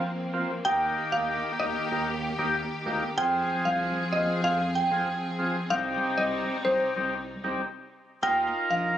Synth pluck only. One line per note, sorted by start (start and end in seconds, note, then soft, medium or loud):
0.65 0.76 G5 medium
1.12 1.23 F5 medium
1.60 1.70 D#5 medium
3.18 3.28 G5 loud
3.65 3.76 F5 medium
4.13 4.23 D#5 medium
4.44 4.55 F5 loud
4.75 4.86 G5 medium
5.70 5.81 F5 medium
6.18 6.28 D#5 medium
6.65 6.76 C5 medium
8.23 8.34 G5 medium
8.71 8.81 F5 medium